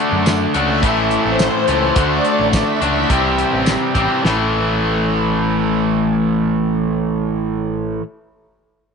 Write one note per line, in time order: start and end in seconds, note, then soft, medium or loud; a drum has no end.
0.00 0.53 D3 medium
0.00 0.53 A3 medium
0.00 0.54 D4 loud
0.00 0.53 F#4 medium
0.12 0.45 F#2 medium
0.26 snare loud
0.26 closed hi-hat medium
0.26 tambourine loud
0.54 0.83 C#2 medium
0.54 0.83 D3 medium
0.54 0.82 A3 medium
0.54 0.81 D4 medium
0.54 0.81 F#4 medium
0.54 1.11 E5 loud
0.54 closed hi-hat medium
0.82 1.16 A1 medium
0.82 1.66 A2 medium
0.82 1.67 E3 medium
0.82 1.67 A3 loud
0.82 1.67 C#4 medium
0.82 kick medium
0.82 closed hi-hat medium
0.86 1.66 E4 medium
1.11 1.95 C5 loud
1.11 closed hi-hat medium
1.25 1.47 A1 medium
1.39 snare loud
1.39 closed hi-hat medium
1.39 tambourine medium
1.67 1.90 C#2 medium
1.67 1.96 A2 medium
1.67 1.95 E3 medium
1.67 1.95 A3 medium
1.67 1.95 C#4 medium
1.67 1.94 E4 medium
1.67 closed hi-hat medium
1.95 2.18 D2 medium
1.95 2.80 D3 medium
1.95 2.80 A3 medium
1.95 2.81 D4 medium
1.95 2.52 D5 loud
1.95 kick loud
1.95 closed hi-hat medium
1.99 2.79 F#4 medium
2.25 closed hi-hat medium
2.39 2.61 A1 medium
2.53 2.82 E5 medium
2.53 kick medium
2.53 snare medium
2.53 closed hi-hat medium
2.53 tambourine loud
2.80 3.04 C#2 medium
2.80 3.10 D3 medium
2.80 3.09 A3 medium
2.80 3.09 D4 medium
2.80 3.08 F#4 medium
2.80 closed hi-hat medium
2.85 3.39 E5 loud
3.09 3.43 C2 loud
3.09 3.93 C3 medium
3.09 3.94 E3 medium
3.09 3.95 G3 medium
3.09 3.94 C4 medium
3.09 3.93 G4 loud
3.09 kick medium
3.09 closed hi-hat medium
3.38 closed hi-hat medium
3.53 3.75 A1 medium
3.66 snare loud
3.66 closed hi-hat medium
3.66 tambourine loud
3.94 4.06 A1 medium
3.94 4.23 C3 medium
3.94 4.23 E3 medium
3.94 4.23 G3 medium
3.94 4.22 C4 medium
3.94 4.22 G4 medium
3.94 kick medium
3.94 closed hi-hat medium
4.23 7.98 A1 medium
4.23 8.01 A2 medium
4.23 8.02 E3 medium
4.23 8.02 A3 loud
4.23 8.03 C#4 medium
4.23 8.03 E4 medium
4.23 snare medium